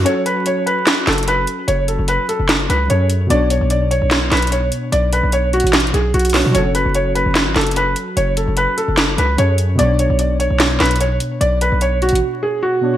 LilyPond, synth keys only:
\new Staff \with { instrumentName = "Synth keys" } { \time 4/4 \key fis \minor \tempo 4 = 148 <fis cis' fis' a'>1~ | <fis cis' fis' a'>2. <fis cis' gis' a'>4 | <b, b d' cis''>1~ | <b, b d' cis''>2.~ <b, b d' cis''>8 <b, b d' cis''>8 |
<fis cis' fis' a'>1~ | <fis cis' fis' a'>2. <fis cis' gis' a'>4 | <b, b d' cis''>1~ | <b, b d' cis''>2.~ <b, b d' cis''>8 <b, b d' cis''>8 | }